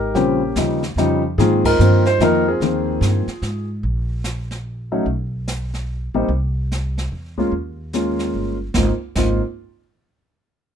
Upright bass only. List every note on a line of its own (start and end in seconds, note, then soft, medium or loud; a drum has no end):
0.00 0.14 G#1 medium
0.15 0.55 A#1 medium
0.56 0.95 D#2 medium
0.96 1.36 F2 medium
1.38 1.78 G#2 medium
1.79 2.19 G2 loud
2.20 2.60 F2 medium
2.60 3.00 D#2 medium
3.01 3.26 G2 loud
3.27 muted upright bass stroke soft
3.42 3.82 G#2 medium
3.83 5.02 A#1 medium
5.06 6.10 B1 medium
6.14 6.28 A1 medium
6.29 7.07 C2 medium
7.12 7.50 E2 medium
7.52 8.30 D#2 medium
8.34 8.72 G1 medium
8.75 8.89 G#1 medium
9.16 9.40 G#1 medium